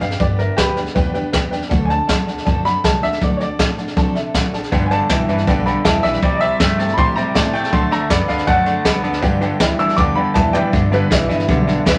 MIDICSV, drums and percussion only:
0, 0, Header, 1, 2, 480
1, 0, Start_track
1, 0, Key_signature, 1, "major"
1, 0, Tempo, 376176
1, 260, Time_signature, 4, 2, 24, 8
1, 15290, End_track
2, 0, Start_track
2, 0, Title_t, "Drums"
2, 11, Note_on_c, 9, 38, 36
2, 135, Note_off_c, 9, 38, 0
2, 135, Note_on_c, 9, 38, 30
2, 251, Note_off_c, 9, 38, 0
2, 251, Note_on_c, 9, 38, 34
2, 255, Note_on_c, 9, 36, 100
2, 378, Note_off_c, 9, 38, 0
2, 383, Note_off_c, 9, 36, 0
2, 496, Note_on_c, 9, 38, 28
2, 623, Note_off_c, 9, 38, 0
2, 738, Note_on_c, 9, 36, 86
2, 738, Note_on_c, 9, 38, 113
2, 738, Note_on_c, 9, 44, 88
2, 865, Note_off_c, 9, 36, 0
2, 865, Note_off_c, 9, 38, 0
2, 865, Note_off_c, 9, 44, 0
2, 975, Note_on_c, 9, 38, 36
2, 1100, Note_off_c, 9, 38, 0
2, 1100, Note_on_c, 9, 38, 31
2, 1222, Note_off_c, 9, 38, 0
2, 1222, Note_on_c, 9, 36, 115
2, 1222, Note_on_c, 9, 38, 35
2, 1349, Note_off_c, 9, 38, 0
2, 1350, Note_off_c, 9, 36, 0
2, 1463, Note_on_c, 9, 38, 35
2, 1591, Note_off_c, 9, 38, 0
2, 1701, Note_on_c, 9, 38, 113
2, 1701, Note_on_c, 9, 44, 88
2, 1703, Note_on_c, 9, 36, 91
2, 1828, Note_off_c, 9, 38, 0
2, 1828, Note_off_c, 9, 44, 0
2, 1830, Note_off_c, 9, 36, 0
2, 1944, Note_on_c, 9, 38, 31
2, 2064, Note_off_c, 9, 38, 0
2, 2064, Note_on_c, 9, 38, 34
2, 2182, Note_off_c, 9, 38, 0
2, 2182, Note_on_c, 9, 38, 36
2, 2183, Note_on_c, 9, 36, 108
2, 2309, Note_off_c, 9, 38, 0
2, 2311, Note_off_c, 9, 36, 0
2, 2427, Note_on_c, 9, 38, 31
2, 2555, Note_off_c, 9, 38, 0
2, 2665, Note_on_c, 9, 36, 86
2, 2667, Note_on_c, 9, 38, 119
2, 2667, Note_on_c, 9, 44, 89
2, 2793, Note_off_c, 9, 36, 0
2, 2795, Note_off_c, 9, 38, 0
2, 2795, Note_off_c, 9, 44, 0
2, 2910, Note_on_c, 9, 38, 36
2, 3032, Note_off_c, 9, 38, 0
2, 3032, Note_on_c, 9, 38, 31
2, 3147, Note_on_c, 9, 36, 102
2, 3152, Note_off_c, 9, 38, 0
2, 3152, Note_on_c, 9, 38, 30
2, 3275, Note_off_c, 9, 36, 0
2, 3280, Note_off_c, 9, 38, 0
2, 3391, Note_on_c, 9, 38, 35
2, 3519, Note_off_c, 9, 38, 0
2, 3625, Note_on_c, 9, 36, 94
2, 3630, Note_on_c, 9, 38, 101
2, 3630, Note_on_c, 9, 44, 93
2, 3753, Note_off_c, 9, 36, 0
2, 3758, Note_off_c, 9, 38, 0
2, 3758, Note_off_c, 9, 44, 0
2, 3872, Note_on_c, 9, 38, 30
2, 3988, Note_off_c, 9, 38, 0
2, 3988, Note_on_c, 9, 38, 31
2, 4099, Note_off_c, 9, 38, 0
2, 4099, Note_on_c, 9, 38, 38
2, 4103, Note_on_c, 9, 36, 107
2, 4226, Note_off_c, 9, 38, 0
2, 4230, Note_off_c, 9, 36, 0
2, 4343, Note_on_c, 9, 38, 30
2, 4470, Note_off_c, 9, 38, 0
2, 4583, Note_on_c, 9, 36, 88
2, 4583, Note_on_c, 9, 38, 108
2, 4583, Note_on_c, 9, 44, 84
2, 4711, Note_off_c, 9, 36, 0
2, 4711, Note_off_c, 9, 38, 0
2, 4711, Note_off_c, 9, 44, 0
2, 4823, Note_on_c, 9, 38, 41
2, 4944, Note_off_c, 9, 38, 0
2, 4944, Note_on_c, 9, 38, 32
2, 5061, Note_off_c, 9, 38, 0
2, 5061, Note_on_c, 9, 38, 32
2, 5064, Note_on_c, 9, 36, 115
2, 5189, Note_off_c, 9, 38, 0
2, 5192, Note_off_c, 9, 36, 0
2, 5304, Note_on_c, 9, 38, 36
2, 5432, Note_off_c, 9, 38, 0
2, 5544, Note_on_c, 9, 36, 83
2, 5546, Note_on_c, 9, 38, 112
2, 5546, Note_on_c, 9, 44, 87
2, 5672, Note_off_c, 9, 36, 0
2, 5673, Note_off_c, 9, 38, 0
2, 5673, Note_off_c, 9, 44, 0
2, 5790, Note_on_c, 9, 38, 37
2, 5908, Note_off_c, 9, 38, 0
2, 5908, Note_on_c, 9, 38, 28
2, 6025, Note_off_c, 9, 38, 0
2, 6025, Note_on_c, 9, 38, 35
2, 6026, Note_on_c, 9, 36, 109
2, 6153, Note_off_c, 9, 38, 0
2, 6154, Note_off_c, 9, 36, 0
2, 6265, Note_on_c, 9, 38, 28
2, 6393, Note_off_c, 9, 38, 0
2, 6500, Note_on_c, 9, 38, 119
2, 6500, Note_on_c, 9, 44, 96
2, 6504, Note_on_c, 9, 36, 93
2, 6628, Note_off_c, 9, 38, 0
2, 6628, Note_off_c, 9, 44, 0
2, 6632, Note_off_c, 9, 36, 0
2, 6745, Note_on_c, 9, 38, 38
2, 6865, Note_off_c, 9, 38, 0
2, 6865, Note_on_c, 9, 38, 30
2, 6986, Note_on_c, 9, 36, 107
2, 6987, Note_off_c, 9, 38, 0
2, 6987, Note_on_c, 9, 38, 31
2, 7113, Note_off_c, 9, 36, 0
2, 7115, Note_off_c, 9, 38, 0
2, 7231, Note_on_c, 9, 38, 33
2, 7359, Note_off_c, 9, 38, 0
2, 7463, Note_on_c, 9, 38, 114
2, 7463, Note_on_c, 9, 44, 93
2, 7464, Note_on_c, 9, 36, 86
2, 7591, Note_off_c, 9, 38, 0
2, 7591, Note_off_c, 9, 44, 0
2, 7592, Note_off_c, 9, 36, 0
2, 7705, Note_on_c, 9, 38, 36
2, 7826, Note_off_c, 9, 38, 0
2, 7826, Note_on_c, 9, 38, 31
2, 7943, Note_off_c, 9, 38, 0
2, 7943, Note_on_c, 9, 38, 34
2, 7944, Note_on_c, 9, 36, 112
2, 8071, Note_off_c, 9, 36, 0
2, 8071, Note_off_c, 9, 38, 0
2, 8184, Note_on_c, 9, 38, 33
2, 8311, Note_off_c, 9, 38, 0
2, 8420, Note_on_c, 9, 38, 125
2, 8420, Note_on_c, 9, 44, 84
2, 8423, Note_on_c, 9, 36, 97
2, 8547, Note_off_c, 9, 38, 0
2, 8547, Note_off_c, 9, 44, 0
2, 8550, Note_off_c, 9, 36, 0
2, 8662, Note_on_c, 9, 38, 38
2, 8783, Note_off_c, 9, 38, 0
2, 8783, Note_on_c, 9, 38, 35
2, 8903, Note_off_c, 9, 38, 0
2, 8903, Note_on_c, 9, 36, 116
2, 8903, Note_on_c, 9, 38, 35
2, 9030, Note_off_c, 9, 38, 0
2, 9031, Note_off_c, 9, 36, 0
2, 9150, Note_on_c, 9, 38, 36
2, 9277, Note_off_c, 9, 38, 0
2, 9383, Note_on_c, 9, 36, 88
2, 9384, Note_on_c, 9, 38, 101
2, 9384, Note_on_c, 9, 44, 85
2, 9510, Note_off_c, 9, 36, 0
2, 9512, Note_off_c, 9, 38, 0
2, 9512, Note_off_c, 9, 44, 0
2, 9629, Note_on_c, 9, 38, 33
2, 9746, Note_off_c, 9, 38, 0
2, 9746, Note_on_c, 9, 38, 33
2, 9858, Note_off_c, 9, 38, 0
2, 9858, Note_on_c, 9, 38, 32
2, 9861, Note_on_c, 9, 36, 115
2, 9985, Note_off_c, 9, 38, 0
2, 9989, Note_off_c, 9, 36, 0
2, 10100, Note_on_c, 9, 38, 29
2, 10228, Note_off_c, 9, 38, 0
2, 10337, Note_on_c, 9, 38, 112
2, 10337, Note_on_c, 9, 44, 89
2, 10338, Note_on_c, 9, 36, 84
2, 10465, Note_off_c, 9, 38, 0
2, 10465, Note_off_c, 9, 44, 0
2, 10466, Note_off_c, 9, 36, 0
2, 10573, Note_on_c, 9, 38, 36
2, 10691, Note_off_c, 9, 38, 0
2, 10691, Note_on_c, 9, 38, 30
2, 10811, Note_off_c, 9, 38, 0
2, 10811, Note_on_c, 9, 38, 30
2, 10815, Note_on_c, 9, 36, 106
2, 10938, Note_off_c, 9, 38, 0
2, 10942, Note_off_c, 9, 36, 0
2, 11050, Note_on_c, 9, 38, 35
2, 11178, Note_off_c, 9, 38, 0
2, 11294, Note_on_c, 9, 36, 83
2, 11294, Note_on_c, 9, 38, 117
2, 11294, Note_on_c, 9, 44, 93
2, 11421, Note_off_c, 9, 36, 0
2, 11421, Note_off_c, 9, 38, 0
2, 11421, Note_off_c, 9, 44, 0
2, 11535, Note_on_c, 9, 38, 33
2, 11650, Note_off_c, 9, 38, 0
2, 11650, Note_on_c, 9, 38, 36
2, 11770, Note_off_c, 9, 38, 0
2, 11770, Note_on_c, 9, 38, 36
2, 11771, Note_on_c, 9, 36, 104
2, 11897, Note_off_c, 9, 38, 0
2, 11899, Note_off_c, 9, 36, 0
2, 12013, Note_on_c, 9, 38, 34
2, 12141, Note_off_c, 9, 38, 0
2, 12250, Note_on_c, 9, 38, 111
2, 12250, Note_on_c, 9, 44, 86
2, 12252, Note_on_c, 9, 36, 85
2, 12377, Note_off_c, 9, 38, 0
2, 12377, Note_off_c, 9, 44, 0
2, 12380, Note_off_c, 9, 36, 0
2, 12493, Note_on_c, 9, 38, 37
2, 12617, Note_off_c, 9, 38, 0
2, 12617, Note_on_c, 9, 38, 31
2, 12731, Note_off_c, 9, 38, 0
2, 12731, Note_on_c, 9, 36, 108
2, 12731, Note_on_c, 9, 38, 59
2, 12858, Note_off_c, 9, 38, 0
2, 12859, Note_off_c, 9, 36, 0
2, 13211, Note_on_c, 9, 44, 84
2, 13211, Note_on_c, 9, 45, 88
2, 13213, Note_on_c, 9, 36, 84
2, 13339, Note_off_c, 9, 44, 0
2, 13339, Note_off_c, 9, 45, 0
2, 13340, Note_off_c, 9, 36, 0
2, 13454, Note_on_c, 9, 43, 82
2, 13581, Note_off_c, 9, 43, 0
2, 13694, Note_on_c, 9, 36, 112
2, 13696, Note_on_c, 9, 38, 38
2, 13822, Note_off_c, 9, 36, 0
2, 13824, Note_off_c, 9, 38, 0
2, 13939, Note_on_c, 9, 38, 31
2, 14067, Note_off_c, 9, 38, 0
2, 14175, Note_on_c, 9, 36, 94
2, 14179, Note_on_c, 9, 38, 118
2, 14179, Note_on_c, 9, 44, 90
2, 14302, Note_off_c, 9, 36, 0
2, 14307, Note_off_c, 9, 38, 0
2, 14307, Note_off_c, 9, 44, 0
2, 14418, Note_on_c, 9, 38, 39
2, 14541, Note_off_c, 9, 38, 0
2, 14541, Note_on_c, 9, 38, 34
2, 14656, Note_on_c, 9, 36, 109
2, 14661, Note_off_c, 9, 38, 0
2, 14661, Note_on_c, 9, 38, 33
2, 14784, Note_off_c, 9, 36, 0
2, 14789, Note_off_c, 9, 38, 0
2, 14902, Note_on_c, 9, 38, 35
2, 15029, Note_off_c, 9, 38, 0
2, 15135, Note_on_c, 9, 36, 85
2, 15139, Note_on_c, 9, 38, 105
2, 15139, Note_on_c, 9, 44, 90
2, 15262, Note_off_c, 9, 36, 0
2, 15267, Note_off_c, 9, 38, 0
2, 15267, Note_off_c, 9, 44, 0
2, 15290, End_track
0, 0, End_of_file